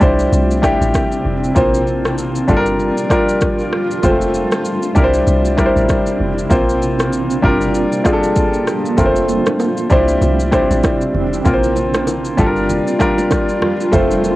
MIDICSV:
0, 0, Header, 1, 5, 480
1, 0, Start_track
1, 0, Tempo, 618557
1, 1209, Time_signature, 4, 2, 24, 8
1, 11141, End_track
2, 0, Start_track
2, 0, Title_t, "Grand piano"
2, 0, Program_c, 0, 0
2, 0, Control_c, 0, 64, 127
2, 0, Note_on_c, 0, 55, 85
2, 6, Note_on_c, 0, 62, 80
2, 12, Note_on_c, 0, 64, 76
2, 19, Control_c, 0, 64, 0
2, 19, Note_on_c, 0, 72, 96
2, 160, Control_c, 0, 64, 127
2, 404, Note_off_c, 0, 55, 0
2, 407, Note_off_c, 0, 62, 0
2, 410, Note_off_c, 0, 64, 0
2, 413, Note_off_c, 0, 72, 0
2, 479, Note_on_c, 0, 55, 83
2, 487, Note_on_c, 0, 62, 77
2, 493, Note_on_c, 0, 64, 78
2, 499, Note_on_c, 0, 67, 96
2, 1033, Note_off_c, 0, 55, 0
2, 1037, Note_off_c, 0, 62, 0
2, 1040, Note_off_c, 0, 64, 0
2, 1043, Note_off_c, 0, 67, 0
2, 1200, Note_on_c, 0, 58, 82
2, 1206, Note_on_c, 0, 60, 75
2, 1213, Note_on_c, 0, 65, 77
2, 1218, Control_c, 0, 64, 0
2, 1220, Note_on_c, 0, 72, 91
2, 1376, Control_c, 0, 64, 127
2, 1922, Note_on_c, 0, 55, 86
2, 1924, Note_off_c, 0, 58, 0
2, 1924, Note_off_c, 0, 65, 0
2, 1927, Note_off_c, 0, 60, 0
2, 1929, Note_on_c, 0, 62, 83
2, 1934, Note_off_c, 0, 72, 0
2, 1936, Note_on_c, 0, 65, 79
2, 1938, Control_c, 0, 64, 0
2, 1942, Note_on_c, 0, 69, 78
2, 1992, Note_on_c, 0, 70, 99
2, 1994, Note_off_c, 0, 69, 0
2, 2053, Control_c, 0, 64, 127
2, 2325, Note_off_c, 0, 55, 0
2, 2328, Note_off_c, 0, 62, 0
2, 2332, Note_off_c, 0, 65, 0
2, 2360, Note_off_c, 0, 70, 0
2, 2403, Note_on_c, 0, 55, 81
2, 2408, Note_on_c, 0, 62, 74
2, 2415, Note_on_c, 0, 65, 75
2, 2421, Note_on_c, 0, 70, 91
2, 2955, Note_off_c, 0, 55, 0
2, 2957, Note_off_c, 0, 62, 0
2, 2961, Note_off_c, 0, 65, 0
2, 2964, Note_off_c, 0, 70, 0
2, 3122, Note_on_c, 0, 56, 67
2, 3129, Note_on_c, 0, 60, 74
2, 3134, Note_on_c, 0, 65, 76
2, 3139, Control_c, 0, 64, 0
2, 3141, Note_on_c, 0, 72, 89
2, 3172, Note_on_c, 0, 57, 80
2, 3184, Note_off_c, 0, 56, 0
2, 3283, Control_c, 0, 64, 127
2, 3840, Note_on_c, 0, 55, 86
2, 3847, Note_on_c, 0, 62, 83
2, 3848, Note_off_c, 0, 60, 0
2, 3851, Note_off_c, 0, 65, 0
2, 3853, Note_on_c, 0, 64, 78
2, 3854, Note_off_c, 0, 72, 0
2, 3860, Control_c, 0, 64, 0
2, 3860, Note_on_c, 0, 70, 76
2, 3870, Note_off_c, 0, 57, 0
2, 3910, Note_on_c, 0, 72, 99
2, 3913, Note_off_c, 0, 70, 0
2, 3989, Control_c, 0, 64, 127
2, 4244, Note_off_c, 0, 55, 0
2, 4247, Note_off_c, 0, 62, 0
2, 4250, Note_off_c, 0, 64, 0
2, 4279, Note_off_c, 0, 72, 0
2, 4321, Note_on_c, 0, 55, 79
2, 4328, Note_on_c, 0, 62, 73
2, 4333, Note_on_c, 0, 64, 80
2, 4340, Note_on_c, 0, 70, 73
2, 4390, Note_on_c, 0, 72, 90
2, 4393, Note_off_c, 0, 70, 0
2, 4874, Note_off_c, 0, 55, 0
2, 4877, Note_off_c, 0, 62, 0
2, 4880, Note_off_c, 0, 64, 0
2, 4908, Note_off_c, 0, 72, 0
2, 5040, Note_on_c, 0, 58, 83
2, 5046, Note_on_c, 0, 60, 76
2, 5052, Note_on_c, 0, 65, 78
2, 5059, Note_on_c, 0, 72, 89
2, 5060, Control_c, 0, 64, 0
2, 5207, Control_c, 0, 64, 127
2, 5759, Note_on_c, 0, 55, 87
2, 5761, Note_off_c, 0, 65, 0
2, 5764, Note_off_c, 0, 58, 0
2, 5766, Note_on_c, 0, 62, 78
2, 5767, Note_off_c, 0, 60, 0
2, 5772, Note_on_c, 0, 65, 77
2, 5773, Note_off_c, 0, 72, 0
2, 5778, Note_on_c, 0, 70, 94
2, 5780, Control_c, 0, 64, 0
2, 5911, Control_c, 0, 64, 127
2, 6163, Note_off_c, 0, 55, 0
2, 6167, Note_off_c, 0, 62, 0
2, 6170, Note_off_c, 0, 65, 0
2, 6173, Note_off_c, 0, 70, 0
2, 6238, Note_on_c, 0, 55, 83
2, 6245, Note_on_c, 0, 62, 73
2, 6250, Note_on_c, 0, 65, 73
2, 6257, Note_on_c, 0, 68, 74
2, 6308, Note_on_c, 0, 69, 93
2, 6312, Note_off_c, 0, 68, 0
2, 6792, Note_off_c, 0, 55, 0
2, 6796, Note_off_c, 0, 62, 0
2, 6798, Note_off_c, 0, 65, 0
2, 6827, Note_off_c, 0, 69, 0
2, 6959, Note_on_c, 0, 57, 82
2, 6965, Note_on_c, 0, 60, 74
2, 6971, Note_on_c, 0, 65, 73
2, 6979, Control_c, 0, 64, 0
2, 6979, Note_on_c, 0, 70, 71
2, 7029, Note_on_c, 0, 72, 90
2, 7032, Note_off_c, 0, 70, 0
2, 7129, Control_c, 0, 64, 127
2, 7680, Note_on_c, 0, 55, 89
2, 7683, Note_off_c, 0, 57, 0
2, 7686, Note_off_c, 0, 60, 0
2, 7687, Note_on_c, 0, 62, 78
2, 7689, Note_off_c, 0, 65, 0
2, 7689, Note_off_c, 0, 72, 0
2, 7693, Note_on_c, 0, 64, 82
2, 7699, Control_c, 0, 64, 0
2, 7700, Note_on_c, 0, 72, 99
2, 7848, Control_c, 0, 64, 127
2, 8084, Note_off_c, 0, 55, 0
2, 8088, Note_off_c, 0, 62, 0
2, 8091, Note_off_c, 0, 64, 0
2, 8094, Note_off_c, 0, 72, 0
2, 8160, Note_on_c, 0, 55, 85
2, 8166, Note_on_c, 0, 62, 76
2, 8173, Note_on_c, 0, 64, 80
2, 8178, Note_on_c, 0, 72, 93
2, 8713, Note_off_c, 0, 55, 0
2, 8716, Note_off_c, 0, 62, 0
2, 8720, Note_off_c, 0, 64, 0
2, 8722, Note_off_c, 0, 72, 0
2, 8883, Note_on_c, 0, 58, 82
2, 8889, Note_on_c, 0, 60, 76
2, 8896, Note_on_c, 0, 65, 80
2, 8899, Control_c, 0, 64, 0
2, 8903, Note_on_c, 0, 70, 77
2, 8952, Note_on_c, 0, 72, 91
2, 8954, Note_off_c, 0, 70, 0
2, 9034, Control_c, 0, 64, 127
2, 9602, Note_off_c, 0, 65, 0
2, 9602, Note_on_c, 0, 55, 90
2, 9605, Note_off_c, 0, 58, 0
2, 9608, Note_off_c, 0, 60, 0
2, 9608, Note_on_c, 0, 62, 79
2, 9614, Note_on_c, 0, 65, 81
2, 9619, Control_c, 0, 64, 0
2, 9620, Note_on_c, 0, 69, 80
2, 9640, Note_off_c, 0, 72, 0
2, 9672, Note_on_c, 0, 70, 92
2, 9673, Note_off_c, 0, 69, 0
2, 9759, Control_c, 0, 64, 127
2, 10005, Note_off_c, 0, 55, 0
2, 10008, Note_off_c, 0, 62, 0
2, 10011, Note_off_c, 0, 65, 0
2, 10040, Note_off_c, 0, 70, 0
2, 10082, Note_on_c, 0, 55, 85
2, 10088, Note_on_c, 0, 62, 79
2, 10094, Note_on_c, 0, 65, 77
2, 10101, Note_on_c, 0, 70, 92
2, 10634, Note_off_c, 0, 55, 0
2, 10637, Note_off_c, 0, 62, 0
2, 10640, Note_off_c, 0, 65, 0
2, 10644, Note_off_c, 0, 70, 0
2, 10800, Note_on_c, 0, 57, 85
2, 10807, Note_on_c, 0, 60, 80
2, 10813, Note_on_c, 0, 65, 73
2, 10818, Control_c, 0, 64, 0
2, 10820, Note_on_c, 0, 72, 91
2, 10934, Control_c, 0, 64, 127
2, 11141, Note_off_c, 0, 57, 0
2, 11141, Note_off_c, 0, 60, 0
2, 11141, Note_off_c, 0, 65, 0
2, 11141, Note_off_c, 0, 72, 0
2, 11141, End_track
3, 0, Start_track
3, 0, Title_t, "Ambient pad"
3, 0, Program_c, 1, 92
3, 0, Note_on_c, 1, 60, 76
3, 10, Note_on_c, 1, 64, 88
3, 11, Note_on_c, 1, 48, 79
3, 13, Note_on_c, 1, 62, 70
3, 1198, Note_off_c, 1, 48, 0
3, 1198, Note_off_c, 1, 64, 0
3, 1199, Note_off_c, 1, 62, 0
3, 1212, Note_on_c, 1, 65, 92
3, 1902, Note_off_c, 1, 60, 0
3, 1930, Note_on_c, 1, 55, 79
3, 1930, Note_on_c, 1, 62, 72
3, 1931, Note_on_c, 1, 70, 89
3, 3118, Note_off_c, 1, 55, 0
3, 3118, Note_off_c, 1, 62, 0
3, 3118, Note_off_c, 1, 70, 0
3, 3824, Note_off_c, 1, 65, 0
3, 3847, Note_on_c, 1, 48, 79
3, 3847, Note_on_c, 1, 60, 72
3, 3847, Note_on_c, 1, 64, 85
3, 3849, Note_on_c, 1, 62, 68
3, 5036, Note_off_c, 1, 48, 0
3, 5036, Note_off_c, 1, 60, 0
3, 5036, Note_off_c, 1, 64, 0
3, 5037, Note_off_c, 1, 62, 0
3, 5764, Note_on_c, 1, 55, 81
3, 5764, Note_on_c, 1, 62, 69
3, 5764, Note_on_c, 1, 65, 70
3, 5767, Note_on_c, 1, 58, 82
3, 6954, Note_off_c, 1, 65, 0
3, 6955, Note_off_c, 1, 55, 0
3, 6955, Note_off_c, 1, 62, 0
3, 6956, Note_off_c, 1, 58, 0
3, 6968, Note_on_c, 1, 60, 77
3, 7685, Note_on_c, 1, 62, 70
3, 7685, Note_on_c, 1, 64, 84
3, 7686, Note_on_c, 1, 48, 80
3, 8875, Note_off_c, 1, 62, 0
3, 8875, Note_off_c, 1, 64, 0
3, 8876, Note_off_c, 1, 48, 0
3, 8887, Note_on_c, 1, 65, 90
3, 9582, Note_off_c, 1, 60, 0
3, 9610, Note_on_c, 1, 55, 81
3, 9610, Note_on_c, 1, 62, 73
3, 9611, Note_on_c, 1, 70, 86
3, 10798, Note_off_c, 1, 55, 0
3, 10798, Note_off_c, 1, 62, 0
3, 10798, Note_off_c, 1, 70, 0
3, 10810, Note_on_c, 1, 60, 74
3, 11141, Note_off_c, 1, 60, 0
3, 11141, Note_off_c, 1, 65, 0
3, 11141, End_track
4, 0, Start_track
4, 0, Title_t, "Log drum bass"
4, 0, Program_c, 2, 39
4, 12, Note_on_c, 2, 36, 101
4, 216, Note_off_c, 2, 36, 0
4, 250, Note_on_c, 2, 36, 102
4, 574, Note_off_c, 2, 36, 0
4, 628, Note_on_c, 2, 33, 92
4, 714, Note_off_c, 2, 33, 0
4, 970, Note_on_c, 2, 29, 90
4, 1175, Note_off_c, 2, 29, 0
4, 1210, Note_on_c, 2, 34, 94
4, 1899, Note_off_c, 2, 34, 0
4, 1931, Note_on_c, 2, 31, 106
4, 2255, Note_off_c, 2, 31, 0
4, 3130, Note_on_c, 2, 29, 99
4, 3454, Note_off_c, 2, 29, 0
4, 3851, Note_on_c, 2, 36, 100
4, 4056, Note_off_c, 2, 36, 0
4, 4090, Note_on_c, 2, 36, 103
4, 4414, Note_off_c, 2, 36, 0
4, 4469, Note_on_c, 2, 33, 92
4, 4555, Note_off_c, 2, 33, 0
4, 4810, Note_on_c, 2, 29, 86
4, 5015, Note_off_c, 2, 29, 0
4, 5049, Note_on_c, 2, 34, 96
4, 5738, Note_off_c, 2, 34, 0
4, 5770, Note_on_c, 2, 31, 107
4, 6094, Note_off_c, 2, 31, 0
4, 6969, Note_on_c, 2, 29, 100
4, 7294, Note_off_c, 2, 29, 0
4, 7690, Note_on_c, 2, 36, 97
4, 7895, Note_off_c, 2, 36, 0
4, 7927, Note_on_c, 2, 36, 101
4, 8253, Note_off_c, 2, 36, 0
4, 8307, Note_on_c, 2, 33, 87
4, 8394, Note_off_c, 2, 33, 0
4, 8649, Note_on_c, 2, 29, 89
4, 8855, Note_off_c, 2, 29, 0
4, 8889, Note_on_c, 2, 34, 100
4, 9578, Note_off_c, 2, 34, 0
4, 9611, Note_on_c, 2, 31, 111
4, 9935, Note_off_c, 2, 31, 0
4, 10810, Note_on_c, 2, 29, 97
4, 11135, Note_off_c, 2, 29, 0
4, 11141, End_track
5, 0, Start_track
5, 0, Title_t, "Drums"
5, 9, Note_on_c, 9, 82, 52
5, 12, Note_on_c, 9, 36, 83
5, 86, Note_off_c, 9, 82, 0
5, 89, Note_off_c, 9, 36, 0
5, 148, Note_on_c, 9, 82, 50
5, 226, Note_off_c, 9, 82, 0
5, 254, Note_on_c, 9, 82, 65
5, 332, Note_off_c, 9, 82, 0
5, 393, Note_on_c, 9, 82, 55
5, 471, Note_off_c, 9, 82, 0
5, 488, Note_on_c, 9, 36, 89
5, 492, Note_on_c, 9, 82, 60
5, 494, Note_on_c, 9, 37, 96
5, 566, Note_off_c, 9, 36, 0
5, 569, Note_off_c, 9, 82, 0
5, 571, Note_off_c, 9, 37, 0
5, 633, Note_on_c, 9, 82, 55
5, 711, Note_off_c, 9, 82, 0
5, 729, Note_on_c, 9, 82, 70
5, 732, Note_on_c, 9, 36, 94
5, 737, Note_on_c, 9, 37, 96
5, 807, Note_off_c, 9, 82, 0
5, 810, Note_off_c, 9, 36, 0
5, 814, Note_off_c, 9, 37, 0
5, 867, Note_on_c, 9, 82, 43
5, 944, Note_off_c, 9, 82, 0
5, 1115, Note_on_c, 9, 82, 44
5, 1192, Note_off_c, 9, 82, 0
5, 1210, Note_on_c, 9, 82, 82
5, 1211, Note_on_c, 9, 36, 110
5, 1288, Note_off_c, 9, 36, 0
5, 1288, Note_off_c, 9, 82, 0
5, 1352, Note_on_c, 9, 82, 56
5, 1430, Note_off_c, 9, 82, 0
5, 1452, Note_on_c, 9, 82, 53
5, 1530, Note_off_c, 9, 82, 0
5, 1590, Note_on_c, 9, 82, 50
5, 1593, Note_on_c, 9, 37, 119
5, 1668, Note_off_c, 9, 82, 0
5, 1671, Note_off_c, 9, 37, 0
5, 1693, Note_on_c, 9, 82, 80
5, 1770, Note_off_c, 9, 82, 0
5, 1827, Note_on_c, 9, 82, 49
5, 1905, Note_off_c, 9, 82, 0
5, 1928, Note_on_c, 9, 82, 52
5, 1931, Note_on_c, 9, 36, 82
5, 2005, Note_off_c, 9, 82, 0
5, 2009, Note_off_c, 9, 36, 0
5, 2066, Note_on_c, 9, 82, 51
5, 2144, Note_off_c, 9, 82, 0
5, 2171, Note_on_c, 9, 82, 65
5, 2248, Note_off_c, 9, 82, 0
5, 2309, Note_on_c, 9, 82, 55
5, 2387, Note_off_c, 9, 82, 0
5, 2408, Note_on_c, 9, 36, 86
5, 2410, Note_on_c, 9, 82, 61
5, 2413, Note_on_c, 9, 37, 95
5, 2485, Note_off_c, 9, 36, 0
5, 2488, Note_off_c, 9, 82, 0
5, 2490, Note_off_c, 9, 37, 0
5, 2551, Note_on_c, 9, 82, 56
5, 2629, Note_off_c, 9, 82, 0
5, 2646, Note_on_c, 9, 82, 71
5, 2651, Note_on_c, 9, 36, 96
5, 2653, Note_on_c, 9, 37, 98
5, 2724, Note_off_c, 9, 82, 0
5, 2729, Note_off_c, 9, 36, 0
5, 2731, Note_off_c, 9, 37, 0
5, 2783, Note_on_c, 9, 82, 43
5, 2861, Note_off_c, 9, 82, 0
5, 2892, Note_on_c, 9, 37, 89
5, 2970, Note_off_c, 9, 37, 0
5, 3034, Note_on_c, 9, 82, 45
5, 3111, Note_off_c, 9, 82, 0
5, 3129, Note_on_c, 9, 82, 83
5, 3130, Note_on_c, 9, 36, 111
5, 3206, Note_off_c, 9, 82, 0
5, 3207, Note_off_c, 9, 36, 0
5, 3269, Note_on_c, 9, 82, 54
5, 3347, Note_off_c, 9, 82, 0
5, 3369, Note_on_c, 9, 82, 56
5, 3447, Note_off_c, 9, 82, 0
5, 3506, Note_on_c, 9, 82, 49
5, 3509, Note_on_c, 9, 37, 112
5, 3583, Note_off_c, 9, 82, 0
5, 3587, Note_off_c, 9, 37, 0
5, 3608, Note_on_c, 9, 82, 79
5, 3685, Note_off_c, 9, 82, 0
5, 3745, Note_on_c, 9, 82, 51
5, 3823, Note_off_c, 9, 82, 0
5, 3847, Note_on_c, 9, 82, 53
5, 3850, Note_on_c, 9, 36, 81
5, 3924, Note_off_c, 9, 82, 0
5, 3928, Note_off_c, 9, 36, 0
5, 3985, Note_on_c, 9, 82, 51
5, 4063, Note_off_c, 9, 82, 0
5, 4090, Note_on_c, 9, 82, 60
5, 4167, Note_off_c, 9, 82, 0
5, 4230, Note_on_c, 9, 82, 55
5, 4307, Note_off_c, 9, 82, 0
5, 4327, Note_on_c, 9, 36, 88
5, 4330, Note_on_c, 9, 82, 60
5, 4332, Note_on_c, 9, 37, 96
5, 4405, Note_off_c, 9, 36, 0
5, 4408, Note_off_c, 9, 82, 0
5, 4410, Note_off_c, 9, 37, 0
5, 4473, Note_on_c, 9, 82, 55
5, 4550, Note_off_c, 9, 82, 0
5, 4569, Note_on_c, 9, 82, 68
5, 4571, Note_on_c, 9, 36, 96
5, 4576, Note_on_c, 9, 37, 95
5, 4647, Note_off_c, 9, 82, 0
5, 4649, Note_off_c, 9, 36, 0
5, 4654, Note_off_c, 9, 37, 0
5, 4704, Note_on_c, 9, 82, 46
5, 4782, Note_off_c, 9, 82, 0
5, 4953, Note_on_c, 9, 82, 45
5, 5030, Note_off_c, 9, 82, 0
5, 5049, Note_on_c, 9, 82, 83
5, 5050, Note_on_c, 9, 36, 108
5, 5127, Note_off_c, 9, 36, 0
5, 5127, Note_off_c, 9, 82, 0
5, 5193, Note_on_c, 9, 82, 53
5, 5271, Note_off_c, 9, 82, 0
5, 5292, Note_on_c, 9, 82, 56
5, 5370, Note_off_c, 9, 82, 0
5, 5426, Note_on_c, 9, 82, 50
5, 5430, Note_on_c, 9, 37, 110
5, 5504, Note_off_c, 9, 82, 0
5, 5507, Note_off_c, 9, 37, 0
5, 5529, Note_on_c, 9, 82, 78
5, 5607, Note_off_c, 9, 82, 0
5, 5666, Note_on_c, 9, 82, 49
5, 5744, Note_off_c, 9, 82, 0
5, 5770, Note_on_c, 9, 36, 83
5, 5848, Note_off_c, 9, 36, 0
5, 5906, Note_on_c, 9, 82, 51
5, 5984, Note_off_c, 9, 82, 0
5, 6010, Note_on_c, 9, 82, 62
5, 6088, Note_off_c, 9, 82, 0
5, 6148, Note_on_c, 9, 82, 54
5, 6226, Note_off_c, 9, 82, 0
5, 6246, Note_on_c, 9, 36, 90
5, 6248, Note_on_c, 9, 82, 61
5, 6250, Note_on_c, 9, 37, 95
5, 6323, Note_off_c, 9, 36, 0
5, 6325, Note_off_c, 9, 82, 0
5, 6328, Note_off_c, 9, 37, 0
5, 6390, Note_on_c, 9, 82, 55
5, 6467, Note_off_c, 9, 82, 0
5, 6486, Note_on_c, 9, 82, 71
5, 6490, Note_on_c, 9, 36, 94
5, 6563, Note_off_c, 9, 82, 0
5, 6567, Note_off_c, 9, 36, 0
5, 6625, Note_on_c, 9, 82, 44
5, 6702, Note_off_c, 9, 82, 0
5, 6731, Note_on_c, 9, 37, 89
5, 6731, Note_on_c, 9, 82, 58
5, 6808, Note_off_c, 9, 82, 0
5, 6809, Note_off_c, 9, 37, 0
5, 6873, Note_on_c, 9, 82, 46
5, 6951, Note_off_c, 9, 82, 0
5, 6968, Note_on_c, 9, 82, 85
5, 6969, Note_on_c, 9, 36, 112
5, 6970, Note_on_c, 9, 64, 74
5, 7045, Note_off_c, 9, 82, 0
5, 7046, Note_off_c, 9, 36, 0
5, 7048, Note_off_c, 9, 64, 0
5, 7109, Note_on_c, 9, 82, 55
5, 7187, Note_off_c, 9, 82, 0
5, 7208, Note_on_c, 9, 82, 54
5, 7211, Note_on_c, 9, 61, 52
5, 7286, Note_off_c, 9, 82, 0
5, 7288, Note_off_c, 9, 61, 0
5, 7345, Note_on_c, 9, 82, 49
5, 7348, Note_on_c, 9, 37, 114
5, 7354, Note_on_c, 9, 61, 74
5, 7422, Note_off_c, 9, 82, 0
5, 7425, Note_off_c, 9, 37, 0
5, 7432, Note_off_c, 9, 61, 0
5, 7448, Note_on_c, 9, 82, 76
5, 7449, Note_on_c, 9, 60, 77
5, 7526, Note_off_c, 9, 60, 0
5, 7526, Note_off_c, 9, 82, 0
5, 7585, Note_on_c, 9, 82, 49
5, 7662, Note_off_c, 9, 82, 0
5, 7684, Note_on_c, 9, 82, 54
5, 7689, Note_on_c, 9, 36, 82
5, 7762, Note_off_c, 9, 82, 0
5, 7767, Note_off_c, 9, 36, 0
5, 7824, Note_on_c, 9, 82, 49
5, 7902, Note_off_c, 9, 82, 0
5, 7930, Note_on_c, 9, 64, 74
5, 7930, Note_on_c, 9, 82, 65
5, 8008, Note_off_c, 9, 64, 0
5, 8008, Note_off_c, 9, 82, 0
5, 8069, Note_on_c, 9, 82, 54
5, 8147, Note_off_c, 9, 82, 0
5, 8167, Note_on_c, 9, 36, 92
5, 8169, Note_on_c, 9, 82, 60
5, 8171, Note_on_c, 9, 37, 97
5, 8244, Note_off_c, 9, 36, 0
5, 8246, Note_off_c, 9, 82, 0
5, 8248, Note_off_c, 9, 37, 0
5, 8310, Note_on_c, 9, 61, 66
5, 8311, Note_on_c, 9, 82, 55
5, 8387, Note_off_c, 9, 61, 0
5, 8389, Note_off_c, 9, 82, 0
5, 8408, Note_on_c, 9, 82, 72
5, 8409, Note_on_c, 9, 60, 69
5, 8409, Note_on_c, 9, 61, 73
5, 8411, Note_on_c, 9, 36, 92
5, 8416, Note_on_c, 9, 37, 97
5, 8486, Note_off_c, 9, 60, 0
5, 8486, Note_off_c, 9, 61, 0
5, 8486, Note_off_c, 9, 82, 0
5, 8489, Note_off_c, 9, 36, 0
5, 8493, Note_off_c, 9, 37, 0
5, 8546, Note_on_c, 9, 82, 43
5, 8624, Note_off_c, 9, 82, 0
5, 8649, Note_on_c, 9, 64, 70
5, 8727, Note_off_c, 9, 64, 0
5, 8795, Note_on_c, 9, 82, 47
5, 8873, Note_off_c, 9, 82, 0
5, 8889, Note_on_c, 9, 82, 84
5, 8890, Note_on_c, 9, 36, 110
5, 8891, Note_on_c, 9, 64, 74
5, 8967, Note_off_c, 9, 82, 0
5, 8968, Note_off_c, 9, 36, 0
5, 8968, Note_off_c, 9, 64, 0
5, 9030, Note_on_c, 9, 82, 54
5, 9107, Note_off_c, 9, 82, 0
5, 9128, Note_on_c, 9, 82, 54
5, 9130, Note_on_c, 9, 61, 56
5, 9206, Note_off_c, 9, 82, 0
5, 9208, Note_off_c, 9, 61, 0
5, 9266, Note_on_c, 9, 82, 49
5, 9270, Note_on_c, 9, 37, 118
5, 9275, Note_on_c, 9, 61, 75
5, 9344, Note_off_c, 9, 82, 0
5, 9347, Note_off_c, 9, 37, 0
5, 9353, Note_off_c, 9, 61, 0
5, 9368, Note_on_c, 9, 60, 75
5, 9370, Note_on_c, 9, 82, 78
5, 9446, Note_off_c, 9, 60, 0
5, 9447, Note_off_c, 9, 82, 0
5, 9505, Note_on_c, 9, 82, 51
5, 9583, Note_off_c, 9, 82, 0
5, 9608, Note_on_c, 9, 82, 54
5, 9611, Note_on_c, 9, 36, 83
5, 9686, Note_off_c, 9, 82, 0
5, 9689, Note_off_c, 9, 36, 0
5, 9748, Note_on_c, 9, 82, 49
5, 9826, Note_off_c, 9, 82, 0
5, 9852, Note_on_c, 9, 64, 75
5, 9852, Note_on_c, 9, 82, 64
5, 9929, Note_off_c, 9, 82, 0
5, 9930, Note_off_c, 9, 64, 0
5, 9991, Note_on_c, 9, 82, 54
5, 10068, Note_off_c, 9, 82, 0
5, 10089, Note_on_c, 9, 36, 87
5, 10092, Note_on_c, 9, 82, 62
5, 10094, Note_on_c, 9, 37, 97
5, 10166, Note_off_c, 9, 36, 0
5, 10169, Note_off_c, 9, 82, 0
5, 10172, Note_off_c, 9, 37, 0
5, 10230, Note_on_c, 9, 61, 67
5, 10232, Note_on_c, 9, 82, 54
5, 10307, Note_off_c, 9, 61, 0
5, 10310, Note_off_c, 9, 82, 0
5, 10328, Note_on_c, 9, 60, 74
5, 10328, Note_on_c, 9, 61, 75
5, 10329, Note_on_c, 9, 82, 72
5, 10332, Note_on_c, 9, 36, 91
5, 10336, Note_on_c, 9, 37, 96
5, 10405, Note_off_c, 9, 60, 0
5, 10405, Note_off_c, 9, 61, 0
5, 10407, Note_off_c, 9, 82, 0
5, 10410, Note_off_c, 9, 36, 0
5, 10414, Note_off_c, 9, 37, 0
5, 10467, Note_on_c, 9, 82, 44
5, 10545, Note_off_c, 9, 82, 0
5, 10570, Note_on_c, 9, 64, 71
5, 10571, Note_on_c, 9, 37, 88
5, 10647, Note_off_c, 9, 64, 0
5, 10649, Note_off_c, 9, 37, 0
5, 10714, Note_on_c, 9, 82, 45
5, 10791, Note_off_c, 9, 82, 0
5, 10810, Note_on_c, 9, 36, 112
5, 10810, Note_on_c, 9, 82, 86
5, 10811, Note_on_c, 9, 64, 75
5, 10887, Note_off_c, 9, 82, 0
5, 10888, Note_off_c, 9, 36, 0
5, 10888, Note_off_c, 9, 64, 0
5, 10950, Note_on_c, 9, 82, 55
5, 11028, Note_off_c, 9, 82, 0
5, 11051, Note_on_c, 9, 61, 57
5, 11051, Note_on_c, 9, 82, 54
5, 11128, Note_off_c, 9, 61, 0
5, 11129, Note_off_c, 9, 82, 0
5, 11141, End_track
0, 0, End_of_file